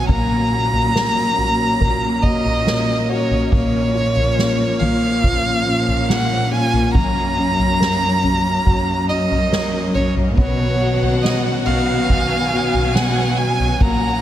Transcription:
0.00 0.11 F#3 medium
0.00 3.48 F#3 medium
0.00 14.21 C#4 medium
0.00 0.11 D#4 soft
0.00 0.10 F#4 medium
0.08 1.76 A#2 medium
0.08 3.48 A#3 medium
0.08 10.34 A#3 medium
0.08 2.24 A#5 loud
0.08 kick loud
0.08 floor tom loud
0.53 1.36 F#4 soft
0.73 floor tom medium
0.95 1.79 A#4 medium
0.95 snare medium
1.38 2.22 F#4 medium
1.38 floor tom soft
1.80 3.48 A#2 loud
1.80 2.66 A#4 medium
1.80 kick medium
1.80 floor tom medium
2.23 3.08 F#4 medium
2.23 3.10 D#5 medium
2.23 kick medium
2.45 floor tom medium
2.67 3.50 A#4 medium
2.67 snare loud
3.09 3.51 F#4 medium
3.09 3.51 C#5 medium
3.31 floor tom medium
3.52 4.77 A#2 loud
3.52 6.92 F3 medium
3.52 4.36 A#3 medium
3.52 4.81 C#5 loud
3.52 kick loud
3.52 floor tom loud
3.95 5.62 F4 medium
4.16 floor tom medium
4.38 5.22 A#3 medium
4.38 snare loud
4.80 5.62 A#2 medium
4.80 6.48 F3 medium
4.80 6.11 F5 medium
4.80 floor tom medium
5.23 6.07 A#3 medium
5.23 kick medium
5.23 floor tom medium
5.66 6.91 A#2 medium
5.66 6.91 C#4 medium
5.88 floor tom medium
6.09 6.92 A#3 medium
6.09 6.53 F#5 medium
6.09 snare loud
6.51 6.93 F4 medium
6.51 6.94 G#5 loud
6.73 floor tom medium
6.94 8.62 F#2 loud
6.94 10.33 F#3 medium
6.94 14.21 F#3 medium
6.94 9.05 A#5 loud
6.94 kick loud
6.94 floor tom loud
7.37 8.21 C#4 soft
7.59 floor tom medium
7.80 9.48 A#4 medium
7.80 snare medium
8.23 9.08 C#4 soft
8.23 floor tom medium
8.65 10.38 F#2 medium
8.65 10.33 F#4 soft
8.65 kick medium
8.65 floor tom medium
9.09 9.94 C#4 soft
9.09 9.91 D#5 medium
9.31 floor tom medium
9.52 10.35 A#4 medium
9.52 snare medium
9.94 10.37 C#4 soft
9.94 10.14 C#5 medium
9.94 floor tom medium
10.16 floor tom medium
10.37 11.62 B2 loud
10.37 13.78 D#3 medium
10.37 13.77 B3 medium
10.37 11.22 B3 medium
10.37 13.77 F#4 medium
10.37 11.19 C#5 medium
10.37 12.05 F#5 medium
10.37 kick loud
10.37 floor tom loud
10.82 11.65 F#4 soft
11.02 floor tom medium
11.22 12.08 B3 medium
11.22 11.42 D#5 medium
11.22 snare medium
11.66 12.47 B2 loud
11.66 12.50 F#4 soft
11.66 12.97 F5 medium
11.66 floor tom medium
12.09 12.93 B3 soft
12.09 13.80 G#5 loud
12.09 kick medium
12.09 floor tom medium
12.52 13.76 B2 medium
12.52 13.37 F#4 medium
12.74 floor tom medium
12.94 13.78 B3 medium
12.94 13.39 F#5 medium
12.94 snare loud
13.37 13.79 F#4 medium
13.37 13.82 G#5 medium
13.59 floor tom medium
13.79 14.21 A#2 loud
13.79 14.21 A#3 medium
13.79 14.21 F#5 loud
13.79 14.21 A#5 loud
13.79 kick loud
13.79 floor tom loud

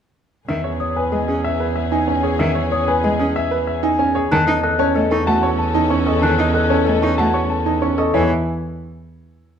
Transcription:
0.48 4.21 E2 medium
0.48 0.61 D#3 medium
0.48 4.12 C#4 soft
0.48 4.11 G#4 medium
0.48 0.69 E5 medium
0.64 0.85 C#5 medium
0.80 1.01 C#5 medium
0.80 1.01 D#6 medium
0.96 1.17 B4 medium
0.96 1.17 G#5 medium
1.12 1.24 G#3 medium
1.12 1.33 G#4 medium
1.12 1.33 D#5 medium
1.28 1.40 C#4 medium
1.28 1.49 G#4 medium
1.44 1.65 E5 medium
1.60 1.81 B4 medium
1.76 1.97 E5 medium
1.92 2.13 D#4 medium
1.92 2.13 G#5 medium
2.07 2.28 C#4 medium
2.07 2.29 G#5 medium
2.23 2.45 G#4 medium
2.23 2.44 C#5 medium
2.39 2.52 D#3 medium
2.39 2.60 E5 medium
2.55 2.76 C#5 medium
2.72 2.92 C#5 medium
2.72 2.93 D#6 medium
2.88 3.08 B4 medium
2.88 3.08 G#5 medium
3.04 3.16 G#3 medium
3.04 3.24 G#4 medium
3.04 3.24 D#5 medium
3.19 3.31 C#4 medium
3.19 3.40 G#4 medium
3.36 3.56 E5 medium
3.51 3.72 B4 medium
3.67 3.88 E5 medium
3.83 4.04 D#4 medium
3.83 4.04 G#5 medium
3.99 4.20 C#4 medium
3.99 4.20 G#5 medium
4.15 4.36 G#4 medium
4.15 4.36 C#5 medium
4.31 8.04 E2 medium
4.31 4.44 D#3 medium
4.31 7.95 C#4 medium
4.31 7.95 A4 medium
4.31 4.52 A5 medium
4.31 4.52 F#6 medium
4.47 4.59 D#4 medium
4.47 4.68 D#5 medium
4.47 4.68 A5 medium
4.63 4.84 A4 medium
4.63 4.84 D#5 medium
4.63 4.84 F#6 medium
4.79 5.00 C#4 medium
4.79 5.00 C#5 medium
4.79 5.00 A5 medium
4.95 5.07 A3 medium
4.95 5.16 A4 medium
4.95 5.16 D#5 medium
5.11 5.23 D#4 medium
5.11 5.32 A4 medium
5.11 5.32 C#6 medium
5.27 5.39 A3 medium
5.27 5.48 F#4 medium
5.27 5.48 A5 medium
5.43 5.64 C#5 medium
5.43 5.64 C#6 medium
5.59 5.80 A5 medium
5.75 5.96 D#4 medium
5.75 5.96 A5 medium
5.90 6.11 C#4 medium
5.90 6.11 C#6 medium
6.06 6.27 A4 medium
6.06 6.27 D#5 medium
6.06 6.28 C#6 medium
6.22 6.34 D#3 medium
6.22 6.43 A5 medium
6.22 6.44 F#6 medium
6.38 6.51 D#4 medium
6.38 6.59 D#5 medium
6.38 6.59 A5 medium
6.54 6.75 A4 medium
6.54 6.75 D#5 medium
6.54 6.76 F#6 medium
6.70 6.91 C#4 medium
6.70 6.91 C#5 medium
6.70 6.91 A5 medium
6.86 6.99 A3 medium
6.86 7.07 A4 medium
6.86 7.07 D#5 medium
7.02 7.14 D#4 medium
7.02 7.23 A4 medium
7.02 7.23 C#6 medium
7.18 7.30 A3 medium
7.18 7.39 F#4 medium
7.18 7.39 A5 medium
7.34 7.55 C#5 medium
7.34 7.55 C#6 medium
7.50 7.71 A5 medium
7.66 7.87 D#4 medium
7.66 7.87 A5 medium
7.82 8.03 C#4 medium
7.82 8.03 C#6 medium
7.98 8.19 A4 medium
7.98 8.19 D#5 medium
7.98 8.19 C#6 medium
8.14 8.29 E2 medium
8.14 8.29 E3 medium
8.14 8.29 E4 medium
8.14 8.29 C#5 medium
8.14 8.29 G#5 medium

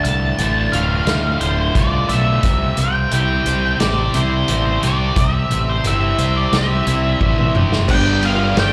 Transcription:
0.00 1.42 D2 medium
0.05 0.33 C2 medium
0.05 1.06 A2 medium
0.05 0.75 A5 medium
0.05 closed hi-hat medium
0.39 0.67 A1 medium
0.39 1.40 D3 medium
0.39 1.08 A3 medium
0.39 closed hi-hat medium
0.72 1.01 D1 medium
0.72 2.10 A3 medium
0.72 2.44 F4 medium
0.72 1.43 F5 medium
0.72 closed hi-hat medium
1.07 1.35 D2 medium
1.07 2.44 A2 medium
1.07 2.10 A3 medium
1.07 snare loud
1.07 closed hi-hat medium
1.41 1.69 D1 medium
1.41 2.44 A2 medium
1.41 2.44 D3 medium
1.41 1.73 C5 medium
1.41 closed hi-hat medium
1.75 2.03 C2 loud
1.75 2.44 D3 medium
1.75 2.44 F4 medium
1.75 2.09 D5 medium
1.75 kick medium
1.75 closed hi-hat medium
2.09 2.37 B1 medium
2.09 3.15 A3 medium
2.09 2.80 E5 medium
2.09 closed hi-hat medium
2.43 2.71 C2 medium
2.43 4.15 C3 medium
2.43 kick loud
2.43 closed hi-hat medium
2.77 3.05 C2 medium
2.77 3.79 C4 medium
2.77 3.12 G5 medium
2.77 closed hi-hat medium
3.12 3.40 C2 medium
3.12 4.13 E4 medium
3.12 3.81 G4 medium
3.12 3.77 G5 medium
3.12 closed hi-hat medium
3.46 3.74 C2 medium
3.46 4.83 G4 medium
3.46 5.17 C5 medium
3.46 closed hi-hat medium
3.80 4.08 A1 medium
3.80 5.50 C4 medium
3.80 4.82 G4 medium
3.80 4.15 D5 medium
3.80 snare loud
3.80 closed hi-hat medium
4.14 4.42 C2 medium
4.14 5.85 C4 medium
4.14 5.84 E4 medium
4.14 4.85 C5 medium
4.14 closed hi-hat medium
4.48 4.76 A1 medium
4.48 6.19 E4 medium
4.48 6.19 C5 medium
4.48 closed hi-hat medium
4.83 5.11 C2 medium
4.83 5.84 G4 medium
4.83 5.15 D5 medium
4.83 closed hi-hat medium
5.16 5.44 C2 medium
5.16 6.87 C3 medium
5.16 5.70 E5 medium
5.16 kick loud
5.16 closed hi-hat loud
5.51 5.78 A1 medium
5.51 6.52 C4 medium
5.51 closed hi-hat medium
5.69 5.86 C5 medium
5.84 6.12 G1 medium
5.84 6.86 E4 medium
5.84 6.51 G4 medium
5.84 6.37 E5 medium
5.84 closed hi-hat medium
6.18 6.46 C2 medium
6.18 7.55 G4 medium
6.18 7.89 C5 medium
6.18 closed hi-hat medium
6.37 6.54 D5 medium
6.52 6.80 C2 medium
6.52 7.89 C4 medium
6.52 7.54 G4 medium
6.52 7.56 E5 medium
6.52 snare loud
6.52 closed hi-hat medium
6.87 7.14 C2 medium
6.87 7.89 C4 medium
6.87 7.89 E4 medium
6.87 closed hi-hat medium
7.20 7.48 A1 loud
7.20 7.89 E4 medium
7.20 7.90 C5 medium
7.20 kick medium
7.20 high tom medium
7.38 mid tom medium
7.55 7.89 F1 medium
7.55 7.89 G4 medium
7.55 mid tom medium
7.72 snare medium
7.88 8.53 G1 medium
7.88 8.55 G2 medium
7.88 8.56 D3 medium
7.88 8.22 G3 medium
7.88 8.23 B3 loud
7.88 8.24 D4 loud
7.88 8.25 G4 loud
7.88 8.25 G5 loud
7.88 kick loud
7.88 crash loud
7.88 cowbell loud
8.23 8.42 G3 medium
8.23 8.40 B3 medium
8.23 8.39 D4 medium
8.23 8.56 F4 medium
8.23 8.39 G4 medium
8.23 8.59 F5 loud
8.23 ride medium
8.39 8.57 G3 medium
8.39 8.57 B3 medium
8.39 8.57 D4 medium
8.39 8.58 G4 medium
8.56 8.73 G1 medium
8.56 8.73 G2 loud
8.56 8.73 D3 medium
8.56 8.73 G3 loud
8.56 8.73 B3 loud
8.56 8.73 D4 loud
8.56 8.73 G4 loud
8.56 8.73 G5 loud
8.56 snare loud
8.56 ride loud
8.56 cowbell medium

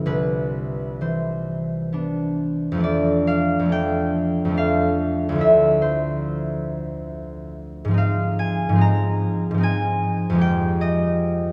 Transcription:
0.00 0.10 G1 soft
0.00 0.10 F3 soft
0.00 0.10 A3 soft
0.00 2.88 E4 soft
0.00 0.10 F4 soft
0.00 2.20 G4 medium
0.06 2.88 C2 soft
0.06 2.88 B4 medium
1.01 2.88 E3 soft
1.01 4.91 C5 soft
1.93 2.88 B3 soft
1.93 2.79 D4 soft
2.72 3.58 F2 soft
2.72 3.61 F3 soft
2.78 3.64 A3 soft
2.78 3.68 D4 soft
2.84 6.74 D5 medium
3.27 4.56 F5 medium
3.59 4.44 F2 soft
3.59 4.47 F3 soft
3.65 4.50 A3 soft
3.65 4.53 D4 soft
3.72 5.44 G5 medium
4.45 5.38 F2 soft
4.45 5.31 F3 soft
4.51 5.34 A3 soft
4.51 7.99 D4 soft
4.57 7.96 F5 medium
5.29 7.94 D2 soft
5.29 7.87 F3 soft
5.35 7.98 A3 soft
5.35 7.99 E4 soft
5.41 8.00 E5 medium
5.82 9.72 C5 medium
7.85 8.68 G#2 soft
7.85 8.71 F3 soft
7.91 8.74 C4 soft
7.91 8.77 D#4 soft
7.98 11.52 F5 medium
8.39 9.62 G#5 medium
8.69 9.50 G#2 soft
8.69 9.53 F3 soft
8.75 9.56 C4 soft
8.75 9.59 D#4 soft
8.81 10.44 A#5 medium
9.51 10.38 G#2 soft
9.51 10.31 F3 soft
9.58 11.52 C4 soft
9.58 11.52 D#4 soft
9.63 11.52 G#5 medium
10.30 11.52 F2 soft
10.30 11.52 F3 soft
10.35 11.52 G#3 soft
10.35 11.52 G4 soft
10.41 11.52 G5 medium
10.81 11.52 D#5 medium

